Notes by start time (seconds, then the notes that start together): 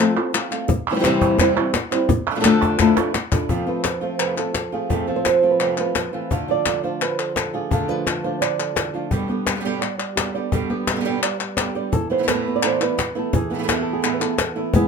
0.00 F3 A3 C4 F4 A4, clap
0.17 C4 F4 A4
0.33 F3 A3 C4 F4, muted nylon-string guitar stroke, clap
0.51 F3 A3 C4 F4, clap
0.68 muted nylon-string guitar stroke, cajon bass
0.89 E3 G3 C4 E4 C5
0.94 E3 G3 C4 E4 C5
0.99 E3 G3 C4 E4 C5
1.03 C3 E3 G3 C4 E4 C5, cajon slap, clap
1.21 cajon bass
1.38 C3 E3 G3 C4 E4 C5, cajon bass, cajon slap, clap
1.56 G3 C4 E4 C5
1.73 muted nylon-string guitar stroke, cajon slap, clap
1.91 G3 C4 E4 C5, clap
2.09 muted nylon-string guitar stroke, cajon bass
2.31 F3 A3 D4 E4
2.35 F3 A3 D4 E4 F4 A4 E5
2.40 F3 A3 D4 E4 F4 A4 E5
2.44 D3 F3 A3 D4 F4 A4 E5, cajon slap, clap
2.62 cajon bass, cajon slap
2.79 D3 F3 A3 D4 E4 F4 A4 E5, cajon bass, cajon slap, clap
2.97 D4 F4 A4, cajon slap
3.14 muted nylon-string guitar stroke, cajon slap, clap
3.31 A3 D4 E4 F4 A4 E5, cajon bass, clap
3.49 F2 C3 F3 A3 C4 F4, cajon bass
3.66 F3 A3 C4 F4 B4
3.84 F4, cajon slap, clap
4.01 F3 A3 C4 F4 C5, cajon slap
4.19 F2 C3 F3 A3 C4 F4 B4, cajon slap, clap
4.37 F3 A3 C4 F4 A4, clap
4.54 muted nylon-string guitar stroke, cajon slap, clap
4.72 F3 A3 C4 F4 G#4
4.90 F2 C3 F3 A3 C4 F4 A4, cajon bass
5.07 F3 A3 C4 F4, cajon slap
5.16 C5
5.25 F4, muted nylon-string guitar stroke, cajon slap, clap
5.42 F3 A3 C4 F4, cajon slap
5.51 B4
5.60 F2 C3 F3 A3 C4 F4 C5, clap
5.77 F3 A3 C4 F4 B4, clap
5.95 F3 C5, muted nylon-string guitar stroke, cajon slap, clap
6.13 E3 F3 A3 C4 F4
6.30 D3 A3 D4 F4, cajon bass
6.48 F3 A3 D4 F4 D5, cajon slap
6.66 D3 A3 D4 F4, cajon slap, clap
6.84 A3 D4 F4 C5, cajon slap
7.01 B4, muted nylon-string guitar stroke, clap
7.19 A4, clap
7.36 A4, cajon slap, clap
7.54 A3 D4 F4 G#4
7.71 D3 A3 D4 F4 A4, cajon bass
7.88 F3 A3 D4 F4 B4
8.06 D3 A3 D4 F4, cajon slap, clap
8.24 A3 D4 F4 C5
8.41 D5, muted nylon-string guitar stroke, clap
8.59 A4, clap
8.75 E3, cajon slap, clap
8.94 F3 A3 D4 F4
9.11 G2 B2 D3 G3 B3 G4, cajon bass
9.28 D3 G3 B3 G4, cajon slap
9.47 G4, cajon slap, clap
9.56 B2 D3 G3 B3 G4
9.60 B2 D3 G3 B3 G4 D5
9.65 G2 B2 D3 G3 B3 G4, cajon slap
9.81 D5, muted nylon-string guitar stroke, cajon slap, clap
9.98 D5, clap
10.16 D3 G3 B3 G4, cajon slap, clap
10.34 D3 G3 B3 G4 D5
10.52 G2 B2 D3 G3 B3 G4, cajon bass
10.70 D3 G3 B3 G4
10.87 G4, cajon slap, clap
10.91 B2 D3 G3 B3 G4
10.96 B2 D3 G3 B3 G4
11.00 B2 D3 G3 B3 G4
11.05 G2 B2 D3 G3 B3 G4 D5
11.22 D5, muted nylon-string guitar stroke, cajon slap, clap
11.40 clap
11.57 D3 G3 B3 G4, cajon slap, clap
11.75 D3 G3 B3 G4 D5
11.92 E3 A4, muted nylon-string guitar stroke, cajon bass
12.10 E3 A3 B3 E4 C5, cajon slap
12.18 A2 E3 A3 B3 E4
12.23 A2 E3 A3 B3 E4
12.28 E2 A2 E3 A3 B3 E4 B4, cajon slap, clap
12.46 B3, cajon slap
12.56 D5
12.62 E2 A2 E3 A3 B3 E4, cajon slap, clap
12.66 C5
12.80 E3 A3 B3 E4 B4, clap
12.98 muted nylon-string guitar stroke, cajon slap, clap
13.15 E3 A3 B3 E4 A4
13.33 E3 G#4, muted nylon-string guitar stroke, cajon bass
13.50 E3 A3 B3 E4 A4, cajon slap
13.54 A2 E3 A3 B3 E4
13.58 A2 E3 A3 B3 E4
13.63 A2 E3 A3 B3 E4
13.68 E2 A2 E3 A3 B3 E4, cajon slap, clap
13.82 A4
13.87 cajon slap
13.93 G#4
14.02 E2 A2 E3 A3 B3 E4, clap
14.14 B4
14.20 E3 A3 B3 E4 A4, clap
14.38 B3, muted nylon-string guitar stroke, cajon slap, clap
14.56 E3 A3 B3 E4 E5
14.73 E3 G#3 B3 E4 G#4, cajon bass